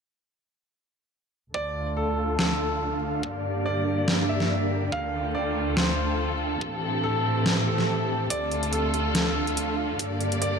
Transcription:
1.54 string section D2 D3 A3 F4 A4, ambient pad D4, grand piano D5, kick
1.63 ambient pad A4
1.97 grand piano A4
2.08 ambient pad F5
2.39 grand piano A4, snare
3.23 string section G2 A#3 G4 D5, kick
3.51 ambient pad A#4
3.66 grand piano D5
4.00 ambient pad G5
4.08 snare
4.29 grand piano E5
4.40 snare
4.92 string section D2 A3 F4 A4, grand piano F5, kick
5.07 ambient pad F5
5.35 grand piano D5
5.50 ambient pad A4
5.69 ambient pad A5
5.77 grand piano C5, snare
6.61 string section A2 E3 C4 G4, ambient pad C4, kick
6.94 ambient pad G4
7.04 grand piano A4, ambient pad E5
7.46 snare
7.67 grand piano A4
7.78 snare
8.30 string section D2 D3 A3 F4 A4, ambient pad D4, grand piano D5, kick, closed hi-hat
8.51 ambient pad A4, closed hi-hat
8.63 closed hi-hat
8.69 grand piano A4, ambient pad F5, closed hi-hat
8.94 closed hi-hat
9.15 grand piano A4, snare, closed hi-hat
9.47 closed hi-hat
9.57 closed hi-hat
9.99 string section G2 A#3 G4 D5, kick, closed hi-hat
10.13 ambient pad A#4
10.21 closed hi-hat
10.32 closed hi-hat
10.42 grand piano D5, closed hi-hat

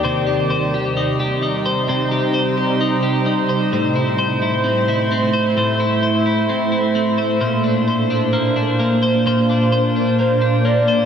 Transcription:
Already playing: clean electric guitar D4 D#4
0.04 clean electric guitar C3 C5, ambient pad C3 G3 D#4 C5
0.27 clean electric guitar G4
0.50 clean electric guitar C5
0.74 clean electric guitar G4
0.97 clean electric guitar D#4
1.20 clean electric guitar G4
1.43 clean electric guitar D#4
1.66 clean electric guitar C5
1.88 clean electric guitar C3 C5
2.12 clean electric guitar G4
2.34 clean electric guitar C5
2.57 clean electric guitar G4
2.81 clean electric guitar D#4
3.03 clean electric guitar G4
3.26 clean electric guitar D#4
3.49 clean electric guitar C5
3.72 clean electric guitar A2 C5, ambient pad A2 A3 E4
3.95 clean electric guitar E4
4.19 clean electric guitar C5
4.42 clean electric guitar E4
4.64 clean electric guitar C4
4.88 clean electric guitar E4
5.12 clean electric guitar C4
5.34 clean electric guitar C5
5.57 clean electric guitar A2 C5
5.80 clean electric guitar E4
6.03 clean electric guitar C5
6.26 clean electric guitar E4
6.49 clean electric guitar C4
6.72 clean electric guitar E4
6.95 clean electric guitar C4
7.18 clean electric guitar C5
7.41 clean electric guitar A#2 C5, ambient pad A#2 A#3 D4 C5
7.64 clean electric guitar D4
7.88 clean electric guitar C5
8.10 clean electric guitar D4
8.33 clean electric guitar A#3
8.56 clean electric guitar D4
8.79 clean electric guitar A#3
9.03 clean electric guitar C5
9.26 clean electric guitar A#2 C5
9.49 clean electric guitar D4
9.72 clean electric guitar C5
9.96 clean electric guitar D4
10.19 clean electric guitar A#3, soft synth lead C5
10.41 clean electric guitar D4
10.65 clean electric guitar A#3, soft synth lead D5
10.88 clean electric guitar C5

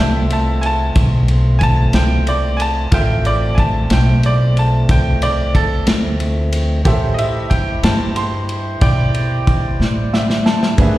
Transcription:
Already playing: upright bass C2, tonewheel organ A3 C4 F4, upright piano F4 A4 C5 E5
0.00 upright piano E5 A5
0.30 upright piano E5 A5, ride
0.61 upright piano G#5, ride
0.66 upright piano A5
0.95 upright bass B1, kick, ride
1.28 ride
1.59 upright piano G#5, kick, ride
1.63 upright piano A5
1.93 upright bass C2, upright piano G5, snare, ride
2.27 upright piano D5, ride
2.57 upright piano G#5, ride
2.61 upright piano A5
2.91 upright bass A1, tonewheel organ F3 A3 C4, upright piano F4 A4 C5 E5 G5, kick, ride
3.25 upright piano D5, ride
3.55 upright piano G#5, kick, ride
3.59 upright piano A5
3.90 upright bass B1, upright piano G5, snare, ride
4.23 upright piano D5, ride
4.57 upright piano A5, ride
4.89 upright bass C2, upright piano G5, kick, ride
5.22 upright piano D5, ride
5.55 upright piano A4, kick, ride
5.87 upright bass D2, snare, ride
6.20 ride
6.52 ride
6.84 upright bass A2, tonewheel organ C#4 F4 G4 C5, upright piano G4 A4 C5 E5, kick, ride
7.14 upright piano D#5
7.18 tonewheel organ E4 G4 C5, upright piano E5, ride
7.50 upright piano G5, kick, ride
7.83 upright bass G2, upright piano A5, snare, ride
8.16 upright piano C6, ride
8.49 ride
8.81 upright bass B2, upright piano D5 G5, kick, ride
9.14 ride
9.47 kick, ride
9.80 upright bass A2, snare
10.14 upright piano E5, snare
10.30 snare
10.46 upright piano A5, snare
10.63 snare
10.78 upright bass G#2, tonewheel organ D#3 C4 G#4 B4, upright piano D4 G#4 B4 E5, kick, ride

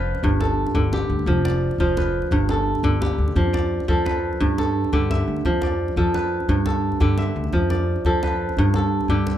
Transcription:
Already playing: upright bass F1, kora F3 F4 G4 B4 D5
0.15 djembe tone
0.23 upright bass G1, kora G2, djembe bass
0.40 kora A4, djembe slap, djembe tone
0.67 djembe slap, djembe tone
0.74 upright bass G1, kora D3, djembe slap, djembe bass
0.84 djembe slap
0.93 kora G4, djembe slap, djembe tone
1.02 djembe slap
1.10 upright bass D2, djembe slap
1.19 djembe tone
1.26 upright bass F1, kora F3, djembe bass
1.45 kora D5, djembe slap, djembe tone
1.54 djembe slap
1.71 djembe slap, djembe tone
1.78 upright bass F1, kora F3 F4, djembe slap, djembe bass
1.89 djembe slap
1.97 kora B4, djembe slap, djembe tone
2.22 djembe tone
2.31 upright bass G1, kora G2, djembe slap, djembe bass
2.49 kora A4, djembe slap, djembe tone
2.66 djembe slap
2.75 djembe tone
2.83 upright bass G1, kora D3, djembe slap, djembe bass
2.93 djembe slap
3.01 kora G4, djembe slap, djembe tone
3.18 upright bass D2
3.28 djembe tone
3.35 upright bass F2, kora F3, djembe bass
3.53 kora D5, djembe slap, djembe tone
3.80 djembe tone
3.88 upright bass F2, kora F3 A4, djembe slap, djembe bass
4.05 kora B4, djembe slap, djembe tone
4.33 djembe tone
4.40 kora G2, upright bass G2, djembe bass
4.58 kora A4, djembe slap, djembe tone
4.84 djembe slap, djembe tone
4.92 upright bass G2, kora D3 G4, djembe slap, djembe bass
5.02 djembe slap
5.11 kora E5, djembe slap, djembe tone
5.19 djembe slap
5.28 upright bass D2, djembe slap
5.36 djembe tone
5.45 upright bass F2, kora F3, djembe bass
5.62 kora D5, djembe slap, djembe tone
5.88 djembe tone
5.96 upright bass F2, kora F3 A4, djembe slap, djembe bass
6.14 kora B4, djembe slap, djembe tone
6.40 djembe tone
6.48 upright bass G2, kora G2, djembe bass
6.66 kora A4, djembe slap, djembe tone
6.92 djembe slap, djembe tone
7.00 upright bass G2, kora D3 G4, djembe slap, djembe bass
7.09 djembe slap
7.18 kora E5, djembe slap, djembe tone
7.26 djembe slap
7.35 upright bass D2, djembe slap
7.44 djembe tone
7.53 upright bass F2, kora F3, djembe bass
7.70 kora D5, djembe slap, djembe tone
7.96 djembe tone
8.05 upright bass F2, kora F3 A4, djembe slap, djembe bass
8.23 kora B4, djembe slap, djembe tone
8.49 djembe tone
8.57 upright bass G2, kora G2, djembe bass
8.74 kora A4, djembe slap, djembe tone
9.01 djembe slap, djembe tone
9.08 upright bass G2, kora D3 G4, djembe slap, djembe bass
9.18 djembe slap
9.27 djembe slap, djembe tone

